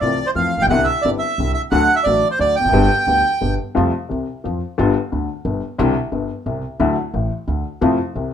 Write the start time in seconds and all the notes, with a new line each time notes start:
0.01 C2 C3 E3 A3 C4 F4 D5
0.27 C5
0.35 F2 E3 F3 A3 C4 F4 F5
0.57 A1
0.62 A#1 G5
0.67 B1 C2 C3 D3 G3 F#5
0.71 C2 C4 E4
0.84 E5
1.02 G1 G2 D3 G3 C4 E4 D5
1.19 E5
1.38 C2 C3 D3 G3 C4 E4
1.54 E5
1.71 D2 D3 F#3 A3 F#4 F#5
1.96 E5
2.04 A1 A2 D3 F#3 A3 D5
2.08 F#4
2.31 C5
2.39 D2 D3 F#3 A3 F#4 D5
2.56 E2 G5
2.61 E1 F2
2.65 F1 F#1 F#2
2.72 G1 G2 D3 G3 B3 G4
3.07 D2 D3 G3 B3 G4
3.41 G1 G2 D3 G3 B3 G4
3.75 F2 C3 F3 G3 A3 F4
4.09 C2 C3
4.44 F2 F3
4.78 G1 G2 D3 G3 B3 F4
5.12 D2 D3
5.45 G1 G2
5.78 C2 C3 D3 G3 C4 E4
6.12 G1 G2
6.46 C2 C3
6.79 D2 D3 F#3 A3 E4
7.14 A1 A2
7.48 D2 D3
7.81 F2 C3 F3 A3 E4
8.15 C2 C3